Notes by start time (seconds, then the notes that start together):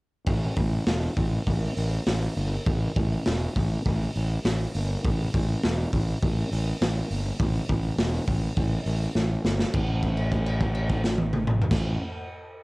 0.27 A1, kick, open hi-hat
0.57 A1, kick, open hi-hat
0.87 E1, snare, open hi-hat
1.17 A1, kick, open hi-hat
1.46 A1, kick, open hi-hat
1.76 A1, open hi-hat
2.06 A1, snare, open hi-hat
2.36 G1, open hi-hat
2.66 A1, kick, open hi-hat
2.96 A1, kick, open hi-hat
3.26 E1, snare, open hi-hat
3.56 A1, kick, open hi-hat
3.85 A1, kick, open hi-hat
4.15 A1, open hi-hat
4.45 A1, snare, open hi-hat
4.74 G1, open hi-hat
5.04 A1, kick, open hi-hat
5.34 A1, kick, open hi-hat
5.63 E1, snare, open hi-hat
5.92 A1, kick, open hi-hat
6.22 A1, kick, open hi-hat
6.51 A1, open hi-hat
6.81 A1, snare, open hi-hat
7.10 G1, open hi-hat
7.39 A1, kick, open hi-hat
7.69 A1, kick, open hi-hat
7.98 E1, snare, open hi-hat
8.27 A1, kick, open hi-hat
8.57 A1, kick, open hi-hat
8.86 A1, open hi-hat
9.15 A1, snare
9.44 G1, snare
9.59 snare
9.74 A1, kick, crash
10.03 kick, crash
10.17 crash
10.32 kick, crash
10.46 crash
10.61 kick, crash
10.75 crash
10.89 kick, crash
11.04 snare
11.18 high tom
11.33 mid tom
11.47 mid tom
11.62 floor tom
11.71 A1, kick, snare, crash